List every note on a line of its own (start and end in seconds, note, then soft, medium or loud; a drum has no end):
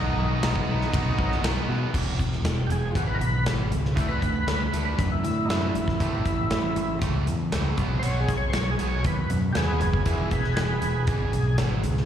0.00 0.43 B2 medium
0.00 0.43 D#3 medium
0.00 0.68 F#3 medium
0.00 0.19 A3 loud
0.00 0.18 B3 medium
0.00 0.66 D#4 loud
0.00 1.41 D#4 medium
0.00 0.17 F#4 loud
0.17 0.33 B1 medium
0.17 0.44 A3 medium
0.17 0.44 B3 medium
0.17 0.45 F#4 medium
0.43 0.58 B1 medium
0.43 0.69 D#3 medium
0.43 0.69 A3 medium
0.43 0.68 B3 medium
0.43 0.67 F#4 medium
0.43 snare loud
0.43 ride bell medium
0.56 kick medium
0.67 0.84 B1 medium
0.67 1.20 B2 medium
0.67 0.93 D#3 medium
0.67 0.93 F#3 medium
0.67 0.94 A3 medium
0.67 0.94 B3 medium
0.67 0.94 D#4 medium
0.67 0.95 F#4 medium
0.81 snare soft
0.93 1.09 B1 medium
0.93 1.42 B2 medium
0.93 1.43 D#3 medium
0.93 1.19 F#3 medium
0.93 1.20 A3 medium
0.93 1.19 B3 medium
0.93 1.16 D#4 loud
0.93 1.18 F#4 medium
0.93 kick loud
0.93 ride bell medium
1.17 1.34 B1 medium
1.17 1.42 F#3 medium
1.17 1.44 B3 medium
1.17 1.44 D#4 medium
1.17 1.45 F#4 medium
1.17 kick medium
1.21 1.43 B2 medium
1.21 1.44 A3 medium
1.32 snare soft
1.43 1.59 B1 medium
1.43 1.93 B2 medium
1.43 1.93 D#3 medium
1.43 1.70 F#3 medium
1.43 1.69 A3 loud
1.43 1.69 B3 medium
1.43 1.68 D#4 medium
1.43 1.67 F#4 loud
1.43 snare loud
1.43 ride bell medium
1.68 1.84 B2 medium
1.68 1.94 F#3 medium
1.68 1.94 A3 medium
1.68 1.93 B3 medium
1.68 1.93 D#4 medium
1.68 1.93 F#4 medium
1.94 2.19 E1 medium
1.94 2.18 E2 medium
1.94 2.18 B2 medium
1.94 2.18 E3 medium
1.94 kick loud
1.94 crash loud
2.19 2.43 E1 medium
2.19 2.43 E2 medium
2.19 2.43 B2 medium
2.19 kick medium
2.19 closed hi-hat medium
2.32 snare soft
2.44 2.69 E1 medium
2.44 2.68 E2 medium
2.44 2.68 B2 medium
2.44 snare loud
2.44 closed hi-hat medium
2.67 2.94 E1 medium
2.67 2.93 E2 medium
2.67 2.70 G4 medium
2.67 closed hi-hat medium
2.71 2.93 B2 medium
2.71 2.96 G#4 medium
2.91 3.20 G#1 medium
2.91 2.94 F4 medium
2.95 3.19 E2 medium
2.95 3.20 B2 medium
2.95 3.20 E3 loud
2.95 3.08 F#4 medium
2.95 kick loud
2.95 closed hi-hat medium
3.07 3.18 B4 medium
3.15 3.18 A#4 medium
3.19 3.45 B1 medium
3.19 3.44 E2 medium
3.19 3.44 B2 medium
3.19 3.45 B4 medium
3.19 closed hi-hat medium
3.46 3.71 G#1 medium
3.46 3.70 E2 medium
3.46 3.70 B2 medium
3.46 3.71 E3 medium
3.46 snare loud
3.46 closed hi-hat medium
3.71 3.96 C#2 medium
3.71 3.94 E2 medium
3.71 3.95 B2 medium
3.71 closed hi-hat medium
3.85 snare soft
3.96 4.22 D2 medium
3.96 4.20 D3 medium
3.96 4.21 A3 medium
3.96 4.21 D4 loud
3.96 4.08 E4 medium
3.96 kick loud
3.96 closed hi-hat medium
4.08 4.83 B4 medium
4.22 4.47 D2 medium
4.22 4.45 D3 medium
4.22 4.45 A3 medium
4.22 kick medium
4.22 closed hi-hat medium
4.47 4.72 D2 medium
4.47 4.70 D3 medium
4.47 4.71 A3 medium
4.47 snare loud
4.47 closed hi-hat medium
4.72 4.98 D2 medium
4.72 4.97 D3 medium
4.72 4.97 A3 medium
4.72 4.97 D4 medium
4.72 closed hi-hat medium
4.85 5.10 B4 medium
4.98 5.23 F#2 medium
4.98 5.21 D3 medium
4.98 5.22 A3 medium
4.98 kick loud
4.98 closed hi-hat medium
5.07 5.10 D#4 medium
5.12 5.49 E4 medium
5.24 5.49 A2 medium
5.24 5.47 D3 medium
5.24 5.47 A3 medium
5.24 closed hi-hat medium
5.46 5.74 F#2 medium
5.46 5.73 D3 medium
5.46 5.49 D#4 medium
5.50 5.74 A3 medium
5.50 5.74 D4 loud
5.50 6.98 E4 medium
5.50 snare loud
5.50 closed hi-hat medium
5.75 6.00 A1 medium
5.75 5.98 D3 medium
5.75 5.98 A3 medium
5.75 closed hi-hat medium
5.88 kick medium
5.88 snare soft
6.00 6.25 A1 medium
6.00 6.24 A2 medium
6.00 6.24 E3 medium
6.00 6.25 A3 medium
6.00 kick medium
6.00 closed hi-hat medium
6.25 6.50 A1 medium
6.25 6.48 A2 medium
6.25 6.48 E3 medium
6.25 kick medium
6.25 closed hi-hat medium
6.51 6.76 A1 medium
6.51 6.74 A2 medium
6.51 6.74 E3 medium
6.51 snare loud
6.51 closed hi-hat medium
6.76 7.01 A1 medium
6.76 6.99 A2 medium
6.76 6.99 E3 medium
6.76 closed hi-hat medium
7.01 7.26 C#2 medium
7.01 7.25 A2 medium
7.01 7.26 E3 medium
7.01 7.26 A3 loud
7.01 kick loud
7.01 closed hi-hat medium
7.27 7.52 E2 medium
7.27 7.50 A2 medium
7.27 7.50 E3 medium
7.27 closed hi-hat medium
7.52 7.77 C#2 medium
7.52 7.76 A2 medium
7.52 7.76 E3 medium
7.52 7.77 A3 loud
7.52 snare loud
7.52 closed hi-hat medium
7.77 8.03 B1 medium
7.77 8.01 B2 medium
7.77 8.02 F#3 medium
7.77 8.02 B3 medium
7.77 kick loud
7.77 closed hi-hat medium
7.99 8.28 B1 medium
7.99 8.27 B2 medium
7.99 8.27 F#3 medium
7.99 8.03 C5 medium
7.99 closed hi-hat medium
8.03 8.27 B3 medium
8.03 8.20 C#5 loud
8.20 8.37 G#4 medium
8.28 8.53 B1 medium
8.28 8.52 B2 medium
8.28 8.52 F#3 medium
8.28 kick medium
8.28 closed hi-hat medium
8.37 8.53 C#5 medium
8.50 8.76 B2 medium
8.50 8.77 F#3 medium
8.50 8.53 C5 medium
8.50 snare loud
8.50 closed hi-hat medium
8.54 8.78 B1 medium
8.54 8.71 C#5 medium
8.71 8.87 G#4 medium
8.79 9.04 B1 medium
8.79 9.03 B2 medium
8.79 9.04 F#3 medium
8.79 9.04 B3 medium
8.79 closed hi-hat medium
8.88 9.05 C#5 medium
9.04 9.29 D#2 medium
9.04 9.28 B2 medium
9.04 9.28 F#3 medium
9.04 9.31 B4 medium
9.04 kick loud
9.04 closed hi-hat medium
9.30 9.55 F#2 medium
9.30 9.53 B2 medium
9.30 9.53 F#3 medium
9.30 closed hi-hat medium
9.53 9.80 D#2 medium
9.53 9.79 B2 medium
9.53 9.79 F#3 medium
9.53 9.80 B3 medium
9.53 9.56 G4 medium
9.53 snare loud
9.53 closed hi-hat medium
9.57 9.80 B3 medium
9.57 9.81 G#4 medium
9.80 10.06 F#1 medium
9.80 10.04 B2 medium
9.80 10.04 F#3 medium
9.80 10.05 B3 medium
9.80 10.05 G#4 medium
9.80 closed hi-hat medium
9.93 kick medium
10.06 10.31 E1 medium
10.06 10.30 E2 medium
10.06 10.30 B2 medium
10.06 10.31 E3 medium
10.06 10.30 E4 medium
10.06 10.30 G#4 medium
10.06 kick medium
10.06 closed hi-hat medium
10.31 10.56 E1 medium
10.31 10.55 E2 medium
10.31 10.55 B2 medium
10.31 10.55 G#4 medium
10.31 10.55 B4 medium
10.31 kick medium
10.31 closed hi-hat medium
10.44 snare soft
10.56 10.82 E1 medium
10.56 10.80 E2 medium
10.56 10.80 B2 medium
10.56 10.80 G#4 medium
10.56 10.80 B4 medium
10.56 snare loud
10.56 closed hi-hat medium
10.81 11.07 E1 medium
10.81 11.05 E2 medium
10.81 11.06 B2 medium
10.81 11.05 G#4 medium
10.81 11.07 B4 medium
10.81 closed hi-hat medium
11.07 11.32 G#1 medium
11.07 11.32 E2 medium
11.07 11.32 B2 medium
11.07 11.32 E3 medium
11.07 11.57 G#4 loud
11.07 kick loud
11.07 closed hi-hat medium
11.33 11.58 B1 medium
11.33 11.56 E2 medium
11.33 11.56 B2 medium
11.33 closed hi-hat medium
11.58 11.83 G#1 medium
11.58 11.83 E2 medium
11.58 11.82 B2 medium
11.58 11.83 E3 medium
11.58 snare loud
11.58 closed hi-hat medium
11.84 12.05 C#2 medium
11.84 12.05 E2 medium
11.84 12.05 B2 medium
11.84 closed hi-hat medium
11.97 snare soft